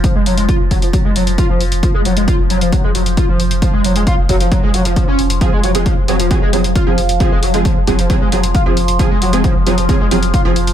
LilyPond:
<<
  \new Staff \with { instrumentName = "Synth stab" } { \time 4/4 \key f \phrygian \tempo 4 = 134 r1 | r1 | r1 | <f c' aes'>16 r8 <f c' aes'>16 r8 <f c' aes'>16 r16 <f c' aes'>16 r16 <f c' aes'>16 r8 <f c' aes'>16 r8 |
<f c' aes'>16 r8 <f c' aes'>16 r8 <f c' aes'>16 r16 <f c' aes'>16 r16 <f c' aes'>16 r8 <f c' aes'>16 r8 | <f c' aes'>16 r8 <f c' aes'>16 r8 <f c' aes'>16 r16 <f c' aes'>16 r16 <f c' aes'>16 r8 <f c' aes'>16 r8 | }
  \new Staff \with { instrumentName = "Analog synth lead" } { \clef bass \time 4/4 \key f \phrygian f16 aes16 ges16 aes16 f'16 r16 ges16 f16 ges16 aes16 ges16 r16 f'16 f16 r8 | f16 aes16 ges16 aes16 f'16 r16 ges16 f16 ges16 aes16 ges16 r16 f'16 f16 r8 | f16 aes16 ges16 aes16 f'16 r16 ges16 f16 ges16 aes16 ges16 f16 f16 des'16 r8 | f16 aes16 ges16 aes16 f16 r16 ges16 f16 ges16 aes16 ges16 r16 f'16 f16 r8 |
f16 aes16 ges16 aes16 f16 r16 ges16 f16 ges16 aes16 ges16 r16 f'16 f16 r8 | f16 aes16 ges16 aes16 f16 r16 ges16 f16 ges16 aes16 ges16 r16 f'16 f16 r8 | }
  \new Staff \with { instrumentName = "Synth drone" } { \clef bass \time 4/4 \key f \phrygian f1~ | f1~ | f1 | f1~ |
f1~ | f1 | }
  \new Staff \with { instrumentName = "Sub bass" } { \clef bass \time 4/4 \key f \phrygian r16 f,,16 f,,16 f,,16 r16 f,,16 f,,16 f,,16 r16 f,,16 f,,16 f,,16 r16 f,,16 f,,16 f,,16 | r16 f,,16 f,,16 f,,16 r16 f,,16 f,,16 f,,16 r16 f,,16 f,,16 f,,16 r16 f,,16 f,,16 f,,16 | r16 f,,16 f,,16 f,,16 r16 f,,16 f,,16 f,,16 r16 f,,16 f,,16 f,,16 r16 f,,16 f,,16 f,,16 | r16 f,,16 f,,16 f,,16 r16 f,,16 f,,16 f,,16 r16 f,,16 f,,16 f,,16 r16 f,,16 f,,16 f,,16 |
r16 f,,16 f,,16 f,,16 r16 f,,16 f,,16 f,,16 r16 f,,16 f,,16 f,,16 r16 f,,16 f,,16 f,,16 | r16 f,,16 f,,16 f,,16 r16 f,,16 f,,16 f,,16 r16 f,,16 f,,16 f,,16 r16 f,,16 f,,16 f,,16 | }
  \new DrumStaff \with { instrumentName = "Drums" } \drummode { \time 4/4 <hh bd>8 hho16 hh16 <hh bd>8 <hho bd>16 hh16 <hh bd>8 hho16 hh16 <hh bd>8 hho16 hh16 | <hh bd>8 hho16 hh16 <hh bd>8 hho16 hh16 <hh bd>8 hho16 hh16 <hh bd>8 hho16 hh16 | <hh bd>8 hho16 hh16 <hh bd>8 <hho bd>16 hh16 <hh bd>8 hho16 hh16 <hh bd>8 hho16 hh16 | <hh bd>8 hho16 hh16 <hh bd>8 hho16 hh16 <hh bd>8 hho16 hh16 <hh bd>8 hho16 hh16 |
<hh bd>8 hho16 hh16 <hh bd>8 <hho bd>16 hh16 <hh bd>8 hho16 hh16 <hh bd>8 hho16 hh16 | <hh bd>8 hho16 hh16 <hh bd>8 hho16 hh16 <hh bd>8 hho16 hh16 <hh bd>8 hho16 hh16 | }
>>